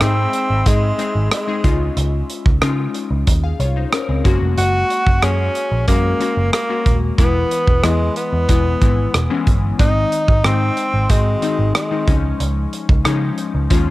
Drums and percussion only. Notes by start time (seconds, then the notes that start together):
0.01 cross-stick, closed hi-hat
0.33 closed hi-hat
0.66 kick, closed hi-hat
0.99 closed hi-hat
1.32 cross-stick, closed hi-hat
1.64 kick, closed hi-hat
1.97 closed hi-hat
2.30 closed hi-hat
2.46 kick
2.62 cross-stick, closed hi-hat
2.94 closed hi-hat
3.27 kick, closed hi-hat
3.60 closed hi-hat
3.92 cross-stick, closed hi-hat
4.25 kick, closed hi-hat
4.58 closed hi-hat
4.90 closed hi-hat
5.07 kick
5.22 cross-stick, closed hi-hat
5.55 closed hi-hat
5.88 kick, closed hi-hat
6.21 closed hi-hat
6.53 cross-stick, closed hi-hat
6.86 kick, closed hi-hat
7.18 kick, closed hi-hat
7.51 closed hi-hat
7.67 kick
7.84 cross-stick, closed hi-hat
8.16 closed hi-hat
8.49 kick, closed hi-hat
8.82 kick, closed hi-hat
9.14 cross-stick, closed hi-hat
9.47 kick, closed hi-hat
9.79 kick, closed hi-hat
10.12 closed hi-hat
10.28 kick
10.44 cross-stick, closed hi-hat
10.77 closed hi-hat
11.10 kick, closed hi-hat
11.42 closed hi-hat
11.75 cross-stick, closed hi-hat
12.08 kick, closed hi-hat
12.40 closed hi-hat
12.73 closed hi-hat
12.89 kick
13.05 cross-stick, closed hi-hat
13.38 closed hi-hat
13.70 kick, closed hi-hat